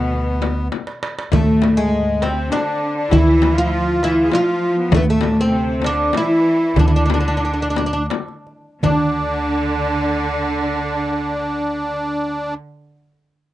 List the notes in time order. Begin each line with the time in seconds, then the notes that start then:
Already playing: D2 B2 B3
0.12 darbuka ka
0.42 darbuka tek, frame drum
0.72 darbuka tek, frame drum
0.87 darbuka ka
1.03 darbuka tek
1.19 darbuka ka
1.32 D2 A2 A3, frame drum, darbuka dum
1.62 darbuka tek, frame drum
1.77 G#2 G#3
2.21 C3 C4, darbuka tek, frame drum
2.49 D3 D4, darbuka tek, frame drum
2.68 darbuka ka
2.96 D4
3.09 D2 E3 E4, frame drum, darbuka dum
3.42 darbuka tek, frame drum
3.53 F3 F4
3.58 E4 F4
3.69 F4
4.02 E3 E4, darbuka tek
4.23 G#4
4.29 F3 F4, frame drum
4.33 F4, darbuka tek
4.49 darbuka ka
4.76 B3
4.91 D2 A2 A3, frame drum, darbuka dum
4.97 B3
5.05 A2 A3
5.10 A3
5.21 darbuka tek, frame drum
5.30 D4
5.37 C3 C4
5.82 D3 D4, darbuka tek, frame drum
5.86 D4
6.13 E3 E4, darbuka tek, frame drum
6.17 E4
6.76 D2 D3 D4, frame drum, darbuka dum
6.85 D4 E4
6.91 D4
6.96 D4
7.06 D4
7.10 darbuka tek, frame drum
7.14 D4
7.20 D4
7.28 D4
7.37 D4
7.43 D4, darbuka ka
7.54 D4
7.62 D4
7.70 D4
7.76 D4, darbuka tek, frame drum
7.86 D4
7.93 D4
8.10 darbuka tek, frame drum
8.28 darbuka ka
8.47 darbuka ka
8.82 D2 D3 D4, darbuka dum, frame drum